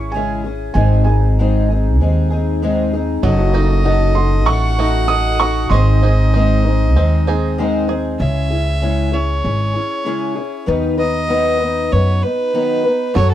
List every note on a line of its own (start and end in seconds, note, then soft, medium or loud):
0.00 0.71 G#1 medium
0.00 0.14 C#4 soft
0.00 0.14 E4 soft
0.00 0.13 G#4 soft
0.12 0.45 C#3 medium
0.12 0.45 G#3 medium
0.12 0.46 C#4 medium
0.12 0.72 G#5 medium
0.16 0.45 E4 medium
0.16 0.43 G#4 medium
0.44 0.75 C#4 soft
0.44 0.76 E4 soft
0.44 0.75 G#4 soft
0.74 1.99 G#1 loud
0.74 1.06 G#2 medium
0.74 1.06 D#3 medium
0.74 1.07 G#3 medium
0.74 1.07 C4 medium
0.74 1.06 D#4 medium
0.74 1.05 G#4 medium
0.74 1.03 G#5 medium
1.04 1.38 D#4 soft
1.04 1.37 G#4 medium
1.04 2.88 G#5 medium
1.09 1.38 G#3 soft
1.09 1.39 C4 soft
1.39 1.69 G#2 medium
1.39 1.69 D#3 medium
1.39 1.70 G#3 medium
1.39 1.70 C4 medium
1.39 1.70 D#4 medium
1.39 1.69 G#4 medium
1.70 1.99 G#3 soft
1.70 2.00 C4 soft
1.70 2.01 D#4 soft
1.70 2.00 G#4 medium
1.99 3.19 D#2 medium
1.99 2.31 G#3 medium
1.99 2.31 C4 medium
1.99 2.31 D#4 medium
1.99 2.29 G#4 medium
2.30 2.62 G#3 soft
2.30 2.62 C4 soft
2.30 2.62 D#4 medium
2.30 2.62 G#4 medium
2.62 2.93 G#2 medium
2.62 2.93 D#3 medium
2.62 2.93 G#3 medium
2.62 2.94 C4 medium
2.62 2.93 D#4 medium
2.62 2.92 G#4 medium
2.93 3.23 G#3 soft
2.93 3.24 C4 soft
2.93 3.24 D#4 medium
2.93 3.24 G#4 medium
3.23 4.46 F#1 loud
3.23 5.71 F#3 medium
3.23 3.55 F#3 medium
3.23 3.55 D#4 medium
3.23 3.55 F#4 medium
3.23 3.53 A4 loud
3.23 4.47 D#5 loud
3.54 4.47 A3 medium
3.54 3.85 D#4 medium
3.54 3.84 D#4 soft
3.54 4.79 F#4 medium
3.54 3.84 F#4 medium
3.54 3.85 A4 medium
3.84 4.16 F#3 medium
3.84 4.16 D#4 medium
3.84 4.78 D#4 medium
3.84 4.15 F#4 medium
3.84 4.14 A4 medium
4.15 4.47 D#4 soft
4.15 4.48 F#4 soft
4.15 4.47 A4 medium
4.15 4.48 C6 medium
4.46 5.67 A1 medium
4.46 4.78 F#3 medium
4.46 4.78 A3 medium
4.46 4.79 D#4 medium
4.46 4.79 F#4 medium
4.46 4.77 A4 medium
4.46 5.71 F#5 loud
4.46 5.11 C#6 medium
4.78 5.78 A3 medium
4.78 5.78 D#4 medium
4.78 5.08 D#4 soft
4.78 5.08 F#4 soft
4.78 5.40 F#4 medium
4.78 5.09 A4 medium
5.07 5.40 F#3 medium
5.07 5.40 D#4 medium
5.07 5.40 F#4 medium
5.07 5.39 A4 medium
5.07 5.41 D#6 medium
5.40 5.72 D#4 soft
5.40 5.72 F#4 soft
5.40 5.78 F#4 medium
5.40 5.71 A4 soft
5.40 5.72 C#6 medium
5.70 6.96 G#1 loud
5.70 6.03 G#2 medium
5.70 6.03 D#3 medium
5.70 8.20 G#3 medium
5.70 6.03 G#3 medium
5.70 6.04 C4 medium
5.70 6.03 D#4 medium
5.70 7.84 D#5 medium
5.70 7.53 C6 medium
5.74 6.01 C5 medium
6.02 6.34 G#3 soft
6.02 6.95 C4 medium
6.02 6.35 C4 soft
6.02 6.33 D#4 medium
6.02 6.34 D#4 soft
6.02 7.27 G#4 medium
6.02 6.34 C5 medium
6.34 6.65 G#2 medium
6.34 6.65 D#3 medium
6.34 6.66 G#3 medium
6.34 6.66 C4 medium
6.34 7.27 D#4 medium
6.34 6.65 D#4 medium
6.34 6.64 C5 medium
6.65 6.94 G#3 soft
6.65 6.96 C4 medium
6.65 6.96 D#4 medium
6.65 6.96 C5 medium
6.95 8.16 D#2 loud
6.95 7.27 G#3 medium
6.95 7.26 C4 medium
6.95 7.27 C4 medium
6.95 7.27 D#4 medium
6.95 7.26 C5 medium
7.27 7.58 G#3 soft
7.27 8.26 C4 medium
7.27 7.59 C4 soft
7.27 8.27 D#4 medium
7.27 7.59 D#4 medium
7.27 7.88 G#4 medium
7.27 7.58 C5 soft
7.58 7.89 G#2 medium
7.58 7.89 D#3 medium
7.58 7.89 G#3 medium
7.58 7.89 C4 medium
7.58 7.88 D#4 medium
7.58 7.87 C5 medium
7.88 8.19 G#3 soft
7.88 8.20 C4 medium
7.88 8.20 D#4 medium
7.88 8.26 G#4 medium
7.88 8.19 C5 medium
8.19 9.40 C#2 loud
8.19 8.51 C#3 medium
8.19 8.51 G#3 medium
8.19 8.51 C#4 medium
8.19 8.51 E4 medium
8.19 8.49 G#4 medium
8.19 9.15 E5 medium
8.50 8.82 C#4 soft
8.50 8.82 E4 soft
8.50 8.82 G#4 soft
8.81 9.13 C#3 medium
8.81 9.13 G#3 medium
8.81 9.13 C#4 medium
8.81 9.11 E4 medium
8.81 9.11 G#4 medium
9.12 9.43 C#4 soft
9.12 9.43 E4 soft
9.12 9.43 G#4 soft
9.12 10.68 C#5 medium
9.43 9.74 G#1 medium
9.43 9.74 G#3 medium
9.43 9.75 C#4 medium
9.43 9.74 E4 medium
9.43 9.73 G#4 medium
9.74 10.05 C#4 soft
9.74 10.05 E4 soft
9.74 10.05 G#4 soft
10.05 10.36 C#3 medium
10.05 10.37 G#3 medium
10.05 10.37 C#4 medium
10.05 10.36 E4 medium
10.05 10.34 G#4 medium
10.35 10.66 C#4 soft
10.35 10.67 E4 soft
10.35 10.67 G#4 medium
10.66 11.88 D#2 loud
10.66 10.98 D#3 medium
10.66 10.98 F#3 medium
10.66 10.98 B3 medium
10.66 10.97 D#4 medium
10.66 10.96 B4 medium
10.98 11.28 B3 soft
10.98 11.29 D#4 soft
10.98 11.29 B4 soft
10.98 11.94 D#5 medium
11.28 11.60 D#3 medium
11.28 11.60 F#3 medium
11.28 11.61 B3 medium
11.28 11.59 D#4 medium
11.28 11.58 B4 medium
11.59 11.91 B3 soft
11.59 11.92 D#4 soft
11.59 11.91 B4 soft
11.91 12.22 F#2 medium
11.91 12.23 F#3 soft
11.91 12.23 B3 medium
11.91 12.23 D#4 medium
11.91 12.22 B4 medium
11.91 12.24 C#5 medium
12.22 12.53 B3 soft
12.22 12.53 D#4 soft
12.22 13.15 B4 medium
12.22 12.54 B4 soft
12.53 12.85 D#3 medium
12.53 12.85 F#3 medium
12.53 12.85 B3 medium
12.53 12.84 D#4 medium
12.53 12.83 B4 medium
12.84 13.14 B3 soft
12.84 13.15 D#4 soft
12.84 13.15 B4 soft
13.14 13.34 F#2 loud
13.14 13.34 F#3 medium
13.14 13.34 C#4 medium
13.14 13.34 F#4 medium
13.14 13.34 A4 medium
13.14 13.30 C#5 medium
13.31 13.34 A4 medium